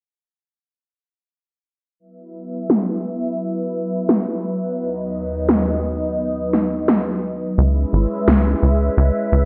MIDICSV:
0, 0, Header, 1, 4, 480
1, 0, Start_track
1, 0, Key_signature, 4, "major"
1, 0, Tempo, 697674
1, 1375, Time_signature, 4, 2, 24, 8
1, 6502, End_track
2, 0, Start_track
2, 0, Title_t, "Analog synth pad"
2, 0, Program_c, 0, 89
2, 1373, Note_on_c, 0, 59, 75
2, 1373, Note_on_c, 0, 64, 76
2, 1373, Note_on_c, 0, 71, 77
2, 1374, Note_on_c, 0, 76, 92
2, 1375, Note_on_c, 0, 54, 84
2, 3275, Note_off_c, 0, 59, 0
2, 3275, Note_off_c, 0, 64, 0
2, 3275, Note_off_c, 0, 76, 0
2, 3296, Note_on_c, 0, 39, 83
2, 3296, Note_on_c, 0, 59, 79
2, 3296, Note_on_c, 0, 63, 77
2, 3296, Note_on_c, 0, 75, 94
2, 5186, Note_off_c, 0, 71, 0
2, 5187, Note_off_c, 0, 54, 0
2, 5196, Note_off_c, 0, 39, 0
2, 5196, Note_off_c, 0, 59, 0
2, 5196, Note_off_c, 0, 63, 0
2, 5196, Note_off_c, 0, 75, 0
2, 5215, Note_on_c, 0, 56, 85
2, 5215, Note_on_c, 0, 64, 78
2, 5216, Note_on_c, 0, 71, 78
2, 5216, Note_on_c, 0, 76, 91
2, 5217, Note_on_c, 0, 61, 76
2, 6502, Note_off_c, 0, 56, 0
2, 6502, Note_off_c, 0, 61, 0
2, 6502, Note_off_c, 0, 64, 0
2, 6502, Note_off_c, 0, 71, 0
2, 6502, Note_off_c, 0, 76, 0
2, 6502, End_track
3, 0, Start_track
3, 0, Title_t, "Analog synth bass"
3, 0, Program_c, 1, 38
3, 5216, Note_on_c, 1, 37, 99
3, 5403, Note_off_c, 1, 37, 0
3, 5457, Note_on_c, 1, 32, 83
3, 5550, Note_off_c, 1, 32, 0
3, 5696, Note_on_c, 1, 37, 92
3, 5883, Note_off_c, 1, 37, 0
3, 5935, Note_on_c, 1, 37, 79
3, 6123, Note_off_c, 1, 37, 0
3, 6175, Note_on_c, 1, 37, 100
3, 6269, Note_off_c, 1, 37, 0
3, 6415, Note_on_c, 1, 37, 85
3, 6502, Note_off_c, 1, 37, 0
3, 6502, End_track
4, 0, Start_track
4, 0, Title_t, "Drums"
4, 1856, Note_on_c, 9, 38, 108
4, 1925, Note_off_c, 9, 38, 0
4, 2814, Note_on_c, 9, 38, 113
4, 2883, Note_off_c, 9, 38, 0
4, 3775, Note_on_c, 9, 38, 120
4, 3844, Note_off_c, 9, 38, 0
4, 4495, Note_on_c, 9, 38, 60
4, 4564, Note_off_c, 9, 38, 0
4, 4735, Note_on_c, 9, 38, 116
4, 4804, Note_off_c, 9, 38, 0
4, 5695, Note_on_c, 9, 38, 116
4, 5764, Note_off_c, 9, 38, 0
4, 6502, End_track
0, 0, End_of_file